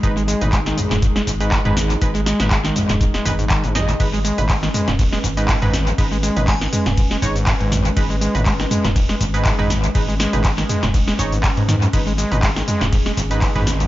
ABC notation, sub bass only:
X:1
M:4/4
L:1/16
Q:"Swing 16ths" 1/4=121
K:G#m
V:1 name="Sub bass" clef=bass
G,,,3 G,,,3 z D,,,3 G,,,3 G,,,3 | G,,,3 G,,,3 z D,,,3 G,,,3 G,,,3 | G,,,3 G,,,3 z D,,,3 G,,,3 G,,,3 | G,,,3 G,,,3 z D,,,3 G,,,3 G,,,3 |
G,,,3 G,,,3 z D,,,3 G,,,3 G,,,3 | G,,,3 G,,,3 z D,,,3 G,,,3 G,,3 | G,,,3 G,,,3 z D,,,3 G,,,3 G,,,3 |]